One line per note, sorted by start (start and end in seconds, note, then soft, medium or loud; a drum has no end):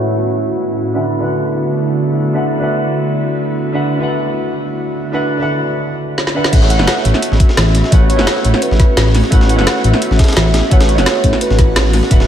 0.00 0.91 A2 medium
0.00 0.97 A3 medium
0.00 0.91 B3 medium
0.00 0.91 C#4 medium
0.00 0.97 E4 medium
0.00 5.79 E4 medium
0.00 5.79 F#4 medium
0.00 0.95 B4 medium
0.00 0.97 C#5 medium
0.00 0.96 F#5 medium
0.93 1.17 D3 medium
0.93 5.79 D3 medium
0.93 5.79 A3 medium
0.93 5.79 B3 medium
0.93 1.19 D4 medium
0.93 1.19 B4 medium
0.93 1.20 E5 medium
0.93 1.20 F#5 medium
1.19 2.31 D3 medium
1.19 2.32 D4 medium
1.19 2.32 B4 medium
1.19 2.33 E5 medium
1.24 2.34 F#5 medium
2.33 2.57 D3 medium
2.33 2.58 D4 medium
2.33 2.59 B4 medium
2.33 2.59 E5 medium
2.33 2.59 F#5 medium
2.58 3.71 D3 medium
2.58 3.71 D4 medium
2.58 3.72 B4 medium
2.58 3.73 E5 medium
2.64 3.73 F#5 medium
3.72 3.96 D3 medium
3.72 3.98 D4 medium
3.72 3.98 B4 medium
3.72 3.99 E5 medium
3.72 3.99 F#5 medium
3.98 5.10 D3 medium
3.98 5.11 D4 medium
3.98 5.11 B4 medium
3.98 5.12 E5 medium
4.03 5.13 F#5 medium
5.12 5.36 D3 medium
5.12 5.37 D4 medium
5.12 5.38 B4 medium
5.12 5.38 E5 medium
5.12 5.38 F#5 medium
5.37 6.32 D3 medium
5.37 6.33 D4 medium
5.37 6.34 B4 medium
5.37 6.34 E5 medium
5.42 6.35 F#5 medium
6.18 snare medium
6.27 snare medium
6.34 6.50 D3 medium
6.34 6.51 D4 medium
6.34 6.51 B4 medium
6.34 6.51 E5 medium
6.34 6.52 F#5 medium
6.44 snare medium
6.52 6.81 A1 loud
6.52 6.75 A3 medium
6.52 12.27 B3 medium
6.52 12.07 C#4 medium
6.52 6.77 E4 medium
6.52 12.27 F#4 medium
6.52 6.77 B4 medium
6.52 6.78 C#5 medium
6.52 6.78 F#5 medium
6.52 kick loud
6.52 closed hi-hat medium
6.52 crash loud
6.62 snare medium
6.70 7.06 F#5 loud
6.70 closed hi-hat medium
6.77 6.87 F#1 medium
6.77 7.89 A3 medium
6.77 7.90 E4 medium
6.77 7.90 B4 medium
6.77 snare medium
6.81 7.91 C#5 medium
6.81 7.92 F#5 medium
6.87 snare loud
6.87 closed hi-hat medium
6.97 snare soft
7.05 7.13 A1 medium
7.05 7.56 E5 loud
7.05 closed hi-hat medium
7.14 snare soft
7.22 closed hi-hat loud
7.22 closed hi-hat medium
7.32 7.39 A1 loud
7.32 snare soft
7.40 kick loud
7.40 closed hi-hat medium
7.49 snare soft
7.57 7.83 A1 loud
7.57 7.93 E5 loud
7.57 snare loud
7.57 closed hi-hat loud
7.57 closed hi-hat medium
7.67 snare soft
7.75 snare medium
7.75 closed hi-hat medium
7.84 snare soft
7.91 8.20 A1 loud
7.91 8.15 A3 medium
7.91 8.16 E4 medium
7.91 8.17 B4 medium
7.91 8.09 C#5 loud
7.91 8.17 C#5 medium
7.91 8.17 F#5 medium
7.91 kick loud
7.91 closed hi-hat medium
8.09 8.63 C#5 loud
8.09 closed hi-hat medium
8.16 8.26 F#1 medium
8.16 9.29 A3 medium
8.16 9.29 E4 medium
8.16 9.30 B4 medium
8.16 snare soft
8.16 snare medium
8.20 9.31 C#5 medium
8.20 9.31 F#5 loud
8.27 snare loud
8.27 closed hi-hat medium
8.37 snare medium
8.45 8.53 A1 medium
8.45 closed hi-hat medium
8.54 snare soft
8.62 9.14 B4 medium
8.62 closed hi-hat loud
8.62 closed hi-hat medium
8.71 8.79 A1 loud
8.71 snare soft
8.80 kick loud
8.80 snare soft
8.80 closed hi-hat medium
8.97 9.22 A1 loud
8.97 snare loud
8.97 closed hi-hat medium
8.97 closed hi-hat loud
9.06 snare soft
9.14 snare soft
9.14 closed hi-hat medium
9.14 open hi-hat medium
9.24 snare soft
9.31 9.60 A1 loud
9.31 9.55 A3 medium
9.31 9.56 E4 medium
9.31 9.56 B4 medium
9.31 9.57 C#5 medium
9.31 9.57 F#5 loud
9.31 kick loud
9.31 closed hi-hat medium
9.41 snare medium
9.49 9.82 F#5 loud
9.49 closed hi-hat medium
9.56 9.66 F#1 medium
9.56 10.68 A3 medium
9.56 10.69 E4 medium
9.56 10.70 B4 medium
9.56 10.70 C#5 medium
9.56 snare medium
9.61 10.71 F#5 loud
9.67 snare loud
9.67 closed hi-hat medium
9.76 snare soft
9.84 9.93 A1 medium
9.84 10.33 E5 loud
9.84 closed hi-hat medium
9.94 snare soft
10.02 closed hi-hat medium
10.11 10.18 A1 loud
10.11 snare soft
10.19 kick loud
10.19 snare medium
10.19 closed hi-hat medium
10.24 snare medium
10.24 closed hi-hat medium
10.28 snare medium
10.28 closed hi-hat medium
10.33 snare medium
10.33 closed hi-hat medium
10.37 10.62 A1 loud
10.37 10.73 E5 loud
10.37 snare loud
10.37 closed hi-hat medium
10.46 snare soft
10.54 snare loud
10.54 closed hi-hat medium
10.63 snare soft
10.70 11.00 A1 loud
10.70 10.94 A3 medium
10.70 10.95 E4 medium
10.70 10.96 B4 medium
10.70 10.89 C#5 loud
10.70 10.96 C#5 medium
10.70 10.97 F#5 loud
10.70 kick loud
10.70 closed hi-hat medium
10.81 snare loud
10.81 closed hi-hat medium
10.89 11.43 C#5 loud
10.89 snare soft
10.89 closed hi-hat medium
10.95 11.06 F#1 medium
10.95 12.08 A3 medium
10.95 12.08 E4 medium
10.95 12.09 B4 medium
10.95 snare medium
10.95 closed hi-hat medium
10.99 12.10 C#5 medium
10.99 12.10 F#5 loud
11.06 snare loud
11.06 closed hi-hat medium
11.15 snare medium
11.24 11.32 A1 medium
11.24 kick medium
11.24 closed hi-hat medium
11.33 snare soft
11.41 11.94 B4 medium
11.41 closed hi-hat medium
11.50 11.75 A1 medium
11.50 snare soft
11.59 kick loud
11.59 snare soft
11.59 closed hi-hat medium
11.76 12.01 A1 medium
11.76 snare loud
11.76 closed hi-hat medium
11.85 snare soft
11.93 snare soft
11.93 closed hi-hat medium
11.93 open hi-hat medium
12.03 snare soft
12.10 12.27 D1 loud
12.10 12.27 D3 medium
12.10 12.27 D4 medium
12.10 12.27 E4 medium
12.10 12.27 B4 medium
12.10 12.27 E5 medium
12.10 12.27 F#5 loud
12.10 kick loud
12.10 closed hi-hat medium
12.20 snare medium